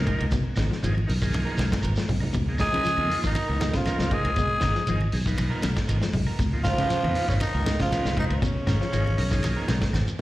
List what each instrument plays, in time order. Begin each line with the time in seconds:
Already playing: transistor combo organ F3 A#3 D#4 A#4
0.06 clean electric guitar G#3, muted clean electric guitar stroke, kick, ride bell, low conga, shekere
0.19 fingered electric bass C#2, clean electric guitar B3 D#4 A#4, ride bell, low conga, claves
0.31 clean electric guitar B2, kick, snare, ride bell, high conga, low conga, shekere
0.44 muted clean electric guitar stroke, muted fingered electric bass stroke
0.56 fingered electric bass G#1, clean electric guitar C#3 F3 B3 D#4, muted clean electric guitar stroke, kick, snare, ride bell, claves, shekere
0.70 clean electric guitar F3, muted clean electric guitar stroke, snare, shekere
0.82 fingered electric bass G#1, transistor combo organ F3 A#3 D#4 G#4, clean electric guitar F3, ride bell, shekere
0.95 muted clean electric guitar stroke, high conga, claves
1.07 fingered electric bass B1, transistor combo organ D#4 A#4, muted clean electric guitar stroke, open hi-hat, high conga, shekere
1.20 clean electric guitar D#3, transistor combo organ F3 A#3 D#4 G#4, muted clean electric guitar stroke, kick, shekere
1.32 fingered electric bass B1, muted clean electric guitar stroke, ride bell, high conga, claves, shekere
1.45 clean electric guitar F3 B3 D#4 A#4
1.57 fingered electric bass B1, clean electric guitar C#3 F3 B3 D#4 A#4, snare, ride bell, high conga, shekere
1.70 kick, snare, ride bell, high conga, shekere
1.82 fingered electric bass G#1, clean electric guitar F3 B3 A#4, muted clean electric guitar stroke, ride bell, high conga, claves, shekere
1.96 clean electric guitar F3, muted clean electric guitar stroke, snare, shekere
2.08 fingered electric bass B1, clean electric guitar G#3, muted clean electric guitar stroke, kick, open hi-hat, low conga, shekere
2.20 clean electric guitar B3 D#4 A#4, low conga, claves
2.33 fingered electric bass C#2, clean electric guitar B2, kick, ride bell, high conga, low conga, shekere
2.46 transistor combo organ F3 A#3 D#4 G#4, muted clean electric guitar stroke
2.58 clean electric guitar C#3 F3 D#4 A#4, trombone G#3, tenor saxophone G#4, kick, snare, ride bell, claves, shekere
2.71 fingered electric bass C#3, clean electric guitar F3, transistor combo organ F3 A#3 D#4 B4, muted clean electric guitar stroke, ride bell, shekere
2.84 clean electric guitar F3, snare, ride bell, high conga, shekere
2.97 fingered electric bass F2, transistor combo organ F3 A#3 D#4 F4, muted clean electric guitar stroke, high conga, claves
3.10 muted clean electric guitar stroke, open hi-hat, shekere
3.24 fingered electric bass G#1, clean electric guitar D#3, trombone D#3, tenor saxophone D#4, muted clean electric guitar stroke, kick, shekere
3.35 muted clean electric guitar stroke, ride bell, high conga, claves, shekere
3.48 fingered electric bass C#2, clean electric guitar F3 B3 D#4 A#4
3.59 clean electric guitar B2 F3 B3 D#4 A#4, snare, ride bell, high conga, shekere
3.73 fingered electric bass C#3, trombone F3, tenor saxophone F4, kick, snare, ride bell, shekere
3.85 clean electric guitar F3 B3 D#4 A#4, transistor combo organ F3 A#3 D#4 A#4, snare, ride bell, high conga, claves, shekere
3.99 fingered electric bass C#2, clean electric guitar F3, muted clean electric guitar stroke, snare, shekere
4.11 clean electric guitar G#3, trombone G#3, tenor saxophone G#4, kick, ride bell, low conga, shekere
4.25 fingered electric bass C#2, clean electric guitar B3 D#4, ride bell, claves
4.36 clean electric guitar B2, kick, ride bell, high conga, low conga, shekere
4.50 muted clean electric guitar stroke, muted fingered electric bass stroke
4.61 fingered electric bass G#1, clean electric guitar C#3 F3 B3 D#4 A#4, kick, snare, ride bell, claves, shekere
4.75 clean electric guitar F3, muted clean electric guitar stroke, snare, shekere
4.87 fingered electric bass G#1, transistor combo organ F3 A#3 D#4 G#4, clean electric guitar F3, ride bell, high conga, shekere
5.01 muted clean electric guitar stroke, high conga, claves
5.12 fingered electric bass B1, transistor combo organ D#4 G#4, muted clean electric guitar stroke, open hi-hat, shekere
5.26 transistor combo organ A#2 F3 D#4 B4, clean electric guitar D#3, muted clean electric guitar stroke, kick, shekere
5.37 fingered electric bass B1, muted clean electric guitar stroke, ride bell, high conga, claves, shekere
5.50 clean electric guitar F3 B3 D#4 A#4
5.62 fingered electric bass B1, clean electric guitar C#3 F3 B3 A#4, snare, ride bell, high conga, shekere
5.76 kick, snare, ride bell, shekere
5.87 fingered electric bass G#1, clean electric guitar F3 B3 D#4 A#4, ride bell, high conga, claves, shekere
6.00 clean electric guitar F3, muted clean electric guitar stroke, snare, high conga, shekere
6.12 fingered electric bass B1, clean electric guitar G#3, muted clean electric guitar stroke, kick, open hi-hat, low conga, shekere
6.27 clean electric guitar B3 D#4 A#4, claves
6.39 fingered electric bass C#2, clean electric guitar B2, kick, ride bell, high conga, low conga, shekere
6.52 transistor combo organ F3 A#3 D#4 F4, muted clean electric guitar stroke
6.64 clean electric guitar C#3 F3 B3 D#4 A#4, trombone F3, tenor saxophone F4, kick, snare, ride bell, claves, shekere
6.77 fingered electric bass C#3, clean electric guitar F3, transistor combo organ F3 A#3 D#4 B4, muted clean electric guitar stroke, snare, ride bell, shekere
6.90 clean electric guitar F3, snare, ride bell, high conga, shekere
7.02 fingered electric bass F2, transistor combo organ A#2 F3 D#4 B4, muted clean electric guitar stroke, high conga, claves
7.15 muted clean electric guitar stroke, open hi-hat, shekere
7.29 fingered electric bass G#1, trombone C#3, tenor saxophone C#4, muted clean electric guitar stroke, kick, shekere
7.40 trombone D#3, tenor saxophone D#4, muted clean electric guitar stroke, ride bell, high conga, claves, shekere
7.54 fingered electric bass C#2, clean electric guitar F3 B3 D#4 A#4
7.65 clean electric guitar C#3 B3 D#4 A#4, muted clean electric guitar stroke, snare, ride bell, high conga, shekere
7.80 fingered electric bass C#3, trombone F3, tenor saxophone F4, kick, snare, ride bell, shekere
7.90 transistor combo organ A#2 F3 D#4 B4, clean electric guitar F3 B3 D#4 A#4, snare, ride bell, high conga, claves, shekere
8.04 fingered electric bass C#2, clean electric guitar F3, muted clean electric guitar stroke, snare, shekere
8.17 trombone D#3, clean electric guitar G#3, tenor saxophone D#4, muted clean electric guitar stroke, kick, ride bell, low conga, shekere
8.30 fingered electric bass C#2, clean electric guitar B3 D#4 A#4, tenor saxophone C#4, ride bell, claves
8.34 trombone C#3
8.42 clean electric guitar B2, kick, ride bell, high conga, low conga, shekere
8.55 muted clean electric guitar stroke, muted fingered electric bass stroke
8.67 fingered electric bass G#1, clean electric guitar C#3 F3 B3 D#4 A#4, kick, snare, ride bell, high conga, claves, shekere
8.81 clean electric guitar F3, muted clean electric guitar stroke, snare, shekere
8.92 fingered electric bass G#1, transistor combo organ F3 A#3 D#4 G#4, clean electric guitar F3, ride bell, shekere
9.05 muted clean electric guitar stroke, high conga, claves
9.17 fingered electric bass B1, transistor combo organ D#4 A#4, muted clean electric guitar stroke, open hi-hat, shekere
9.30 clean electric guitar D#3, transistor combo organ F3 A#3 D#4 G#4, muted clean electric guitar stroke, kick, snare, shekere
9.43 fingered electric bass B1, muted clean electric guitar stroke, ride bell, high conga, claves, shekere
9.56 clean electric guitar F3 B3 D#4 A#4
9.67 fingered electric bass B1, clean electric guitar C#3 F3 B3 D#4 A#4, snare, ride bell, high conga, shekere
9.81 kick, snare, ride bell, shekere
9.93 fingered electric bass G#1, clean electric guitar F3 B3, muted clean electric guitar stroke, snare, high conga, claves, shekere
10.07 muted clean electric guitar stroke, high conga, shekere